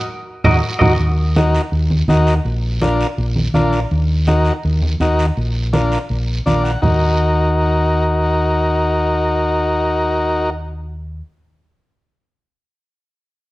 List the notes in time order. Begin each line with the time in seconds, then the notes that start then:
0.44 D#2 D#4 F#4 A#4 D#5, low conga, long guiro
0.79 D#2 D#4 F#4 A#4 D#5, low conga, long guiro
0.99 D#2, high conga, long guiro
1.36 D#4 F#4 A#4, high conga, short guiro
1.54 short guiro
1.72 D#2, high conga, long guiro
1.90 high conga
2.08 D#2 D#4 F#4 A#4, high conga, short guiro
2.27 short guiro
2.45 A#1, high conga, long guiro
2.81 D4 F4 A#4, high conga, short guiro
3.01 short guiro
3.18 A#1, high conga, long guiro
3.36 high conga
3.54 A#1 D4 F4 A#4, high conga, short guiro
3.73 short guiro
3.91 D#2, high conga, long guiro
4.27 D#4 F#4 A#4, high conga, short guiro
4.45 short guiro
4.63 D#2, high conga, long guiro
4.82 high conga
5.00 D#2 D#4 F#4 A#4, high conga, short guiro
5.19 short guiro
5.37 A#1, high conga, long guiro
5.73 D4 F4 A#4, high conga, short guiro
5.92 short guiro
6.09 A#1, high conga, long guiro
6.46 A#1 D4 F4 A#4 D5, high conga, short guiro
6.63 F#5, short guiro
6.82 D#2 D#4 F#4 A#4, low conga, long guiro